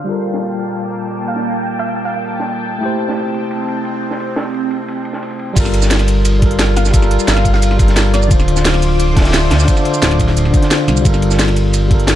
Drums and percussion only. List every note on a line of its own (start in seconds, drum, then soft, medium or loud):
0.09 ride medium
0.26 ride medium
0.34 snare soft
0.42 open hi-hat medium
0.59 ride medium
0.77 ride medium
0.94 ride medium
1.11 ride medium
1.28 ride medium
1.36 snare soft
1.45 ride medium
1.62 ride medium
1.79 ride medium
1.96 ride medium
2.13 ride medium
2.30 ride medium
2.40 snare soft
2.48 ride medium
2.56 ride soft
2.65 ride medium
2.83 ride medium
2.99 ride medium
3.09 snare medium
3.17 open hi-hat medium
3.34 ride medium
3.51 ride medium
3.68 ride medium
3.85 ride medium
4.03 ride medium
4.11 snare soft
4.20 ride medium
4.36 snare medium
4.36 open hi-hat medium
4.54 ride medium
4.70 ride medium
4.88 ride medium
5.05 ride medium
5.13 snare soft
5.23 ride medium
5.30 ride soft
5.39 ride medium
5.57 kick loud
5.57 closed hi-hat loud
5.57 crash loud
5.57 ride medium
5.57 shaker medium
5.65 snare soft
5.65 shaker soft
5.74 closed hi-hat medium
5.74 ride medium
5.82 snare soft
5.82 shaker medium
5.90 snare loud
5.90 closed hi-hat loud
5.90 open hi-hat medium
5.90 shaker soft
5.99 snare soft
5.99 closed hi-hat soft
6.08 closed hi-hat medium
6.08 ride medium
6.08 shaker soft
6.25 closed hi-hat medium
6.25 ride medium
6.25 shaker soft
6.42 kick loud
6.42 closed hi-hat medium
6.42 ride medium
6.51 closed hi-hat soft
6.59 snare loud
6.59 closed hi-hat medium
6.59 ride medium
6.59 shaker soft
6.76 snare medium
6.76 closed hi-hat medium
6.76 ride medium
6.76 shaker soft
6.85 snare soft
6.85 shaker medium
6.94 kick loud
6.94 closed hi-hat loud
6.94 ride medium
6.94 shaker soft
7.02 snare soft
7.02 shaker soft
7.11 closed hi-hat medium
7.11 ride medium
7.19 shaker medium
7.28 snare loud
7.28 closed hi-hat medium
7.28 ride medium
7.28 shaker soft
7.37 snare soft
7.37 closed hi-hat soft
7.45 kick medium
7.45 closed hi-hat medium
7.45 ride medium
7.45 shaker soft
7.54 snare soft
7.62 closed hi-hat medium
7.62 ride loud
7.62 shaker soft
7.71 snare soft
7.79 kick loud
7.79 closed hi-hat medium
7.79 ride medium
7.79 shaker soft
7.88 snare soft
7.88 closed hi-hat soft
7.96 snare loud
7.96 closed hi-hat medium
7.96 ride loud
7.96 shaker soft
8.05 ride soft
8.14 snare soft
8.14 closed hi-hat medium
8.14 ride medium
8.14 shaker soft
8.22 shaker medium
8.31 kick loud
8.31 closed hi-hat loud
8.31 ride medium
8.31 shaker soft
8.39 snare soft
8.39 shaker soft
8.48 closed hi-hat medium
8.48 ride medium
8.56 snare medium
8.56 shaker medium
8.65 snare loud
8.65 closed hi-hat medium
8.65 open hi-hat medium
8.65 shaker soft
8.74 snare soft
8.74 closed hi-hat soft
8.82 closed hi-hat medium
8.82 ride medium
8.82 shaker soft
9.00 closed hi-hat medium
9.00 ride medium
9.00 shaker soft
9.17 kick loud
9.17 snare medium
9.17 closed hi-hat medium
9.17 open hi-hat medium
9.21 snare medium
9.21 open hi-hat medium
9.25 snare medium
9.25 closed hi-hat soft
9.25 open hi-hat medium
9.29 snare medium
9.29 open hi-hat medium
9.33 snare loud
9.33 closed hi-hat medium
9.33 ride medium
9.33 shaker soft
9.50 snare loud
9.50 snare soft
9.50 closed hi-hat medium
9.50 open hi-hat medium
9.50 shaker soft
9.60 snare soft
9.60 shaker medium
9.68 kick loud
9.68 closed hi-hat medium
9.68 ride medium
9.68 shaker soft
9.77 snare soft
9.77 shaker soft
9.85 closed hi-hat medium
9.85 ride medium
9.94 shaker medium
10.02 snare loud
10.02 closed hi-hat medium
10.02 ride medium
10.02 shaker soft
10.11 snare soft
10.11 closed hi-hat soft
10.20 kick medium
10.20 closed hi-hat medium
10.20 ride medium
10.20 shaker soft
10.28 snare soft
10.37 closed hi-hat medium
10.37 ride medium
10.37 shaker soft
10.45 snare soft
10.54 kick loud
10.54 closed hi-hat medium
10.54 ride medium
10.54 shaker soft
10.62 snare soft
10.62 closed hi-hat soft
10.71 snare loud
10.71 closed hi-hat medium
10.71 ride medium
10.71 shaker soft
10.80 ride soft
10.88 snare soft
10.88 closed hi-hat medium
10.88 ride medium
10.88 shaker soft
10.97 shaker medium
11.05 kick loud
11.05 closed hi-hat medium
11.05 ride medium
11.05 shaker medium
11.14 snare soft
11.14 shaker soft
11.22 closed hi-hat medium
11.22 ride medium
11.31 snare medium
11.31 shaker medium
11.39 snare loud
11.39 closed hi-hat medium
11.39 open hi-hat medium
11.39 shaker medium
11.48 snare soft
11.48 closed hi-hat soft
11.56 closed hi-hat medium
11.56 ride medium
11.56 shaker soft
11.74 closed hi-hat medium
11.74 ride medium
11.74 shaker soft
11.91 kick loud
11.91 closed hi-hat medium
11.91 ride medium
12.00 closed hi-hat soft
12.07 snare loud
12.07 closed hi-hat medium
12.07 ride medium
12.07 shaker soft